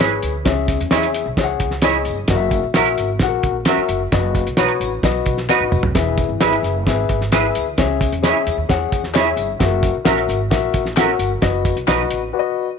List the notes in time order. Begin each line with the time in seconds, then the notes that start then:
Already playing: G#1
0.00 E4 G#4 B4 C#5 E5, snare, clap, closed hi-hat, tambourine
0.23 D2, closed hi-hat, tambourine
0.45 C#2 C#3 G#4 C#5 E5, kick, snare, closed hi-hat, tambourine
0.68 kick, closed hi-hat, tambourine
0.81 E2, closed hi-hat
0.91 E2 E4 G#4 C#5 D#5 E5, snare, clap, closed hi-hat, tambourine
0.97 E5
1.03 closed hi-hat
1.14 closed hi-hat, tambourine
1.26 B1
1.37 C#2 G#4 C#5 E5, kick, snare, closed hi-hat, tambourine
1.44 F#5
1.60 C#2, kick, closed hi-hat, tambourine
1.71 snare
1.82 E4 G#4 C#5 D#5 E5, snare, clap, closed hi-hat, tambourine
2.05 G1, closed hi-hat, tambourine
2.28 F#1 F#4 A#4 D#5, kick, snare, closed hi-hat, tambourine
2.36 E5
2.51 kick, closed hi-hat, tambourine
2.63 A#1
2.74 A#1 C#4 F#4 A#4 E5, snare, clap, closed hi-hat, tambourine
2.85 closed hi-hat
2.98 G#1, closed hi-hat, tambourine
3.19 A#1 F#4 G#4 F#5, kick, snare, closed hi-hat, tambourine
3.28 A#4
3.43 A#1, kick, closed hi-hat
3.65 C#4 F#4 A#4 E5, snare, clap, closed hi-hat, tambourine
3.78 muted upright bass stroke
3.89 F#1, closed hi-hat, tambourine
4.12 F#1 F#4 B4 D#5, kick, snare, closed hi-hat, tambourine
4.35 kick, closed hi-hat, tambourine
4.47 B1, closed hi-hat
4.57 B1 D#4 F#4 B4 C#5 D#5, snare, clap, closed hi-hat, tambourine
4.68 closed hi-hat
4.80 A1, closed hi-hat, tambourine
5.03 B1 F#4 B4 D#5, kick, snare, closed hi-hat, tambourine
5.26 B1, kick, closed hi-hat, tambourine
5.38 snare
5.49 D#4 F#4 B4 D#5, snare, clap, tambourine
5.60 A1
5.72 F#1, mid tom, tambourine
5.83 F1, floor tom
5.95 E1 E3 G#4 B4 E5, kick, snare, closed hi-hat, tambourine
6.18 kick, closed hi-hat, tambourine
6.29 G#1
6.40 G#1 E4 G#4 B4 D#5 E5, snare, clap, closed hi-hat, tambourine
6.47 E5
6.53 closed hi-hat
6.63 F#1, closed hi-hat, tambourine
6.86 G#1 G#4 B4 E5, kick, snare, closed hi-hat, tambourine
7.09 G#1, kick, closed hi-hat
7.21 snare
7.32 E4 G#4 B4 E5, snare, clap, closed hi-hat, tambourine
7.55 D2, closed hi-hat, tambourine
7.78 C#2 C#3 G#4 C#5 E5, kick, snare, closed hi-hat
8.01 kick, closed hi-hat, tambourine
8.12 E2, closed hi-hat
8.23 E4 G#4 C#5 D#5 E5, snare, clap, closed hi-hat, tambourine
8.29 E5
8.47 E2, closed hi-hat, tambourine
8.57 D#2
8.69 E2 G#4 C#5 F#5, kick, snare, closed hi-hat, tambourine
8.92 E2, kick, closed hi-hat, tambourine
9.04 snare
9.14 E4 G#4 C#5 D#5 E5, snare, clap, closed hi-hat, tambourine
9.20 E5
9.36 G1, closed hi-hat, tambourine
9.59 F#1 F#4 G#4 E5, kick, snare, closed hi-hat, tambourine
9.66 A#4
9.83 kick, closed hi-hat, tambourine
10.05 A#1 C#4 F#4 A#4 E5, snare, clap, closed hi-hat, tambourine
10.18 closed hi-hat
10.29 G#1, closed hi-hat, tambourine
10.50 A#1 F#4 A#4 E5, kick, snare, closed hi-hat, tambourine
10.74 A#1, kick, closed hi-hat, tambourine
10.86 snare
10.96 C#4 F#4 A4 A#4 E5 F#5, snare, clap, closed hi-hat, tambourine
11.02 A#4
11.19 G1, closed hi-hat, tambourine
11.42 F#1 F#4 B4 D#5, kick, snare, closed hi-hat, tambourine
11.65 kick, closed hi-hat, tambourine
11.76 B1, closed hi-hat
11.87 B1 D#4 F#4 B4 D#5, snare, clap, closed hi-hat, tambourine
12.10 A1, closed hi-hat, tambourine
12.33 F#4 B4 D5
12.39 D#5